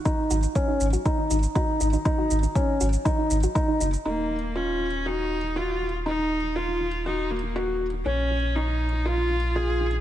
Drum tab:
SH |x-xxx-xxx-xxx-xx|x-xxx-xxx-xxx-xx|----------------|----------------|
BD |o---o---o---o---|o---o---o---o---|----------------|----------------|

SH |----------------|
BD |----------------|